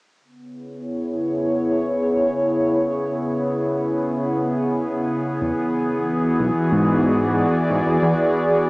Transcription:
0.20 5.42 C#3 medium
0.24 8.70 B3 medium
0.42 6.74 E4 medium
0.42 8.70 G#4 medium
0.42 5.42 C#5 medium
5.41 5.52 E2 medium
5.41 8.70 E3 medium
5.94 8.70 F#4 medium
6.39 6.50 B1 medium
6.39 8.70 D5 medium
6.72 7.45 G#2 medium
7.70 7.81 G#2 loud
7.86 7.97 E2 medium
8.02 8.13 E2 loud

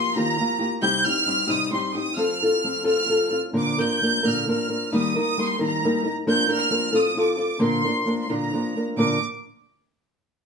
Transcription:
0.00 0.15 F3 medium
0.00 0.15 A#3 medium
0.00 0.15 F4 medium
0.00 0.15 G4 medium
0.00 0.15 C6 medium
0.15 0.40 D#3 medium
0.15 0.38 F3 medium
0.15 0.39 A#3 medium
0.15 0.39 F4 medium
0.15 0.40 G4 medium
0.15 0.66 A#5 loud
0.39 0.61 F3 medium
0.39 0.60 A#3 medium
0.39 0.59 F4 medium
0.39 0.58 G4 medium
0.59 0.82 A#3 soft
0.59 0.82 F4 medium
0.59 0.81 G4 medium
0.82 1.06 C3 medium
0.82 1.06 G3 medium
0.82 1.06 C4 medium
0.82 1.05 D#4 medium
0.82 1.05 G4 medium
0.82 1.04 G6 loud
1.06 1.26 C4 soft
1.06 1.26 D#4 medium
1.06 1.27 G4 medium
1.06 1.49 F6 loud
1.27 1.47 G3 medium
1.27 1.47 C4 medium
1.27 1.47 D#4 medium
1.27 1.46 G4 medium
1.47 1.73 C3 medium
1.47 1.71 G3 medium
1.47 1.71 C4 medium
1.47 1.72 D#4 medium
1.47 1.73 G4 medium
1.47 1.74 D#6 loud
1.72 1.95 G3 medium
1.72 1.95 C4 medium
1.72 1.95 D#4 medium
1.72 1.94 G4 medium
1.72 1.94 C6 medium
1.95 2.16 C4 soft
1.95 2.18 D#4 medium
1.95 2.17 G4 medium
1.95 2.19 D#6 loud
2.17 2.42 F3 medium
2.17 2.42 C4 medium
2.17 2.42 F4 medium
2.17 2.42 A4 medium
2.17 2.86 F6 loud
2.43 2.63 C4 soft
2.43 2.64 F4 medium
2.43 2.64 A4 medium
2.64 2.84 F3 soft
2.64 2.84 C4 medium
2.64 2.84 F4 medium
2.64 2.83 A4 medium
2.84 3.07 F3 soft
2.84 3.08 C4 medium
2.84 3.09 F4 medium
2.84 3.08 A4 medium
2.84 3.36 F6 loud
3.08 3.32 F3 medium
3.08 3.31 C4 medium
3.08 3.31 F4 medium
3.08 3.29 A4 medium
3.30 3.53 C4 soft
3.30 3.53 F4 soft
3.30 3.54 A4 soft
3.53 3.79 A#2 medium
3.53 3.79 D3 medium
3.53 3.79 F3 medium
3.53 3.78 A#3 medium
3.53 3.78 D4 medium
3.53 3.77 A#4 medium
3.58 3.80 D6 medium
3.78 4.00 F3 soft
3.78 4.01 A#3 medium
3.78 4.01 D4 medium
3.78 4.02 A#4 medium
3.78 4.25 G6 loud
4.02 4.23 F3 medium
4.02 4.23 A#3 medium
4.02 4.23 D4 medium
4.02 4.22 A#4 medium
4.23 4.49 A#2 medium
4.23 4.49 D3 medium
4.23 4.46 F3 medium
4.23 4.46 A#3 medium
4.23 4.47 D4 medium
4.23 4.48 A#4 medium
4.28 4.50 F6 loud
4.47 4.70 F3 medium
4.47 4.69 A#3 medium
4.47 4.69 D4 medium
4.47 4.68 A#4 medium
4.47 4.91 F6 medium
4.69 4.92 F3 soft
4.69 4.91 A#3 soft
4.69 4.92 D4 soft
4.69 4.92 A#4 medium
4.92 5.16 D#3 medium
4.92 5.17 G3 medium
4.92 5.17 A#3 medium
4.92 5.15 D#4 medium
4.92 5.14 A#4 medium
4.96 5.18 D#6 medium
5.16 5.37 A#3 soft
5.16 5.38 D#4 medium
5.16 5.38 A#4 medium
5.21 5.39 D#6 medium
5.38 5.58 G3 medium
5.38 5.58 A#3 medium
5.38 5.59 D#4 medium
5.38 5.58 A#4 medium
5.42 5.62 C6 medium
5.59 5.84 D#3 medium
5.59 5.83 G3 medium
5.59 5.83 A#3 medium
5.59 5.84 D#4 medium
5.59 5.83 A#4 medium
5.59 6.09 A#5 medium
5.84 6.06 G3 medium
5.84 6.04 A#3 medium
5.84 6.04 D#4 medium
5.84 6.03 A#4 medium
6.04 6.26 A#3 soft
6.04 6.27 D#4 soft
6.04 6.26 A#4 medium
6.27 6.51 F3 medium
6.27 6.49 A#3 medium
6.27 6.48 D4 medium
6.27 6.48 A#4 medium
6.27 6.50 G6 loud
6.49 6.69 A#3 medium
6.49 6.69 D4 medium
6.49 6.71 A#4 medium
6.54 6.95 F6 loud
6.70 6.93 F3 medium
6.70 6.93 A#3 medium
6.70 6.93 D4 medium
6.70 6.92 A#4 medium
6.93 7.16 F3 medium
6.93 7.15 C4 medium
6.93 7.16 F4 medium
6.93 7.17 A4 medium
6.97 7.19 D#6 medium
7.17 7.39 F3 medium
7.17 7.38 C4 medium
7.17 7.37 F4 medium
7.17 7.36 A4 medium
7.17 7.62 D6 medium
7.38 7.59 C4 soft
7.38 7.60 F4 soft
7.38 7.60 A4 soft
7.59 7.84 A#2 medium
7.59 7.84 D3 medium
7.59 7.84 F3 medium
7.59 7.84 A#3 medium
7.59 7.84 D4 medium
7.59 7.83 A#4 medium
7.63 8.19 C6 medium
7.84 8.04 F3 soft
7.84 8.05 A#3 medium
7.84 8.06 D4 soft
7.84 8.06 A#4 medium
8.05 8.28 F3 soft
8.05 8.28 A#3 medium
8.05 8.28 D4 medium
8.05 8.28 A#4 medium
8.24 8.30 C6 soft
8.29 8.54 A#2 soft
8.29 8.54 D3 medium
8.29 8.52 F3 medium
8.29 8.53 A#3 medium
8.29 8.52 D4 medium
8.29 8.53 A#4 medium
8.29 8.82 A#5 medium
8.53 8.75 F3 medium
8.53 8.76 A#3 soft
8.53 8.76 D4 medium
8.53 8.76 A#4 medium
8.77 8.97 F3 soft
8.77 8.97 A#3 soft
8.77 8.97 D4 soft
8.77 8.98 A#4 soft
8.96 9.17 A#2 medium
8.96 9.17 D3 medium
8.96 9.17 F3 medium
8.96 9.18 A#3 medium
8.96 9.18 D4 medium
8.96 9.18 A#4 medium
8.96 9.21 D6 medium

